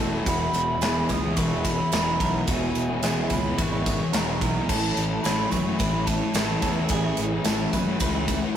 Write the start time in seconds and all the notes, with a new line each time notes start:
Already playing: A2 E3 A3 A4 E5 C#6
0.00 E1 A2 E3 G#3 A3 C#4 E4
0.12 A3 C#4 E4
0.16 E3 G#3
0.25 E1 E2 B2 E3 G#3 C#4 E4 F#4 C#5 E5 B5, kick, ride, tambourine
0.29 E3
0.39 E3 G#3 C#4 E4
0.53 E1, ride, tambourine
0.66 B2 E3 G#3 C#4 E4
0.72 E3
0.81 E1 E2 B2 E3 G#3 C#4 E4 G#4, snare, ride, tambourine
0.85 E3
1.08 C#2 E3 G#3 C#4 B4 D#6, muted distorted electric guitar stroke, kick, ride, tambourine
1.12 E4
1.23 B2 E3, muted clean electric guitar stroke
1.36 E1 B4 C#6, kick, ride, tambourine
1.50 E3 G#3 C#4 E4
1.55 B2 E3
1.64 E2 B2 B5, kick, ride, tambourine
1.69 E3
1.79 muted clean electric guitar stroke, muted distorted electric guitar stroke
1.92 E1 E2 B2 E3 G#3 C#4 A#4 B5, snare, ride, tambourine
1.96 E3 E4
2.20 B1 E2 B2 E3 G#3 C#4 A#4, kick, ride, tambourine
2.24 E3 E4
2.33 E3 G#3 C#4 E4
2.38 B2
2.47 E1 E2 B2 E3 G#3 C#4 E4 F#4 G#5, kick, ride, tambourine
2.51 E3
2.61 E3 G#3 C#4 E4
2.75 E1, ride, tambourine
2.88 E3 G#3 C#4 E4
2.92 B2 E3
3.02 E1 E2 B2 E3 G#3 C#4 E4 G#4, snare, ride, tambourine
3.06 E3
3.29 C#2 E3 G#3 C#4 B4 B5, muted distorted electric guitar stroke, kick, ride, tambourine
3.33 E4
3.46 B2 E3, muted clean electric guitar stroke
3.58 G#1 B4 C#6, kick, ride, tambourine
3.73 B2 E3 G#3 C#4 E4
3.86 E2 B2, kick, ride, tambourine
3.90 E3
4.01 muted distorted electric guitar stroke, muted clean electric guitar stroke
4.13 E1 E2 B2 E3 G#3 C#4 A#4, snare, ride, tambourine
4.17 E4
4.41 B1 E2 B2 E3 G#3 C#4 E4 A#4, kick, ride, tambourine
4.46 E3
4.55 E3 G#3 C#4 E4
4.59 B2
4.68 A1 A2 E3 C#4 E4 A4 A5, kick, crash
4.73 A3
4.81 C#4 E4
4.97 A1, ride, tambourine
5.08 A3 C#4 E4
5.14 E3
5.22 A1 A2 E3 C#4 A4 B5, snare, ride, tambourine
5.27 A3 E4
5.50 F#2 E3 C#4 B4 C#6, muted distorted electric guitar stroke, kick, ride, tambourine
5.55 E4
5.66 A3, muted clean electric guitar stroke
5.71 E3
5.77 A1 B4 B5, kick, ride, tambourine
5.93 E3 A3 C#4 E4
6.06 A2 E3 A5, kick, ride, tambourine
6.10 A3
6.22 muted clean electric guitar stroke, muted distorted electric guitar stroke
6.34 A1 A2 E3 C#4 A4 A5, snare, ride, tambourine
6.38 A3 E4
6.62 E2 A2 E3 A3 C#4 A4, kick, ride, tambourine
6.67 E4
6.76 E3 A3 C#4 E4
6.89 A1 A2 E3 G#4 F#5, kick, ride, tambourine
6.93 E3 A3 C#4 E4
7.04 C#4 E4
7.17 A1, ride, tambourine
7.32 E3 A3 C#4 E4
7.44 A1 A2 E3 A3 A4, snare, ride, tambourine
7.48 C#4 E4
7.73 F#2 E3 C#4 B4, muted distorted electric guitar stroke, kick, ride, tambourine
7.77 E4
7.87 E3 A3, muted clean electric guitar stroke
7.99 C#2 B4, kick, ride, tambourine
8.13 E3 A3 C#4 E4
8.28 A2 E3 A3, kick, ride, tambourine
8.42 muted distorted electric guitar stroke, muted clean electric guitar stroke